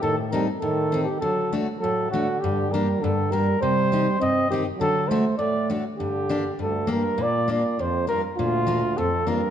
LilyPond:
<<
  \new Staff \with { instrumentName = "Flugelhorn" } { \time 2/4 \key g \minor \tempo 4 = 101 a'8 bes'8 a'8. g'16 | a'8 r8 a'8 fis'8 | g'8 bes'8 a'8 bes'8 | c''4 ees''8 g'8 |
a'8 c''8 d''8 r8 | g'4 a'8 bes'8 | \key bes \major d''8 d''8 c''8 bes'8 | f'4 a'8 bes'8 | }
  \new Staff \with { instrumentName = "Steel-string acoustic guitar" } { \time 2/4 \key g \minor << { r8 <c' ees' a'>8 r8 <c' ees' a'>8 | r8 <a d' fis'>8 r8 <a d' fis'>8 | r8 <bes d' g'>8 r8 <bes d' g'>8 | r8 <c' ees' g'>8 r8 <c' ees' g'>8 |
r8 <a d' fis'>8 r8 <a d' fis'>8 | r8 <bes d' g'>8 r8 <bes d' g'>8 | \key bes \major r8 <bes d' f'>8 r8 <bes d' f'>8 | r8 <bes d' f'>8 r8 <bes d' f'>8 | } \\ { a,4 a,4 | d4 a,4 | g,4 g,4 | c4 g,4 |
d4 a,4 | g,4 g,4 | bes,4 f,4 | bes,4 f,4 | } >> }
  \new Staff \with { instrumentName = "Euphonium" } { \clef bass \time 2/4 \key g \minor ees8 g8 ees8. ees16 | fis8 r8 fis8 d8 | d8 g8 d8 g8 | g4 c'8 ees8 |
fis8 a8 a8 r8 | d4 d,8 g,8 | \key bes \major bes,8 bes,8 f,8 g,8 | d,4 f,8 g,8 | }
>>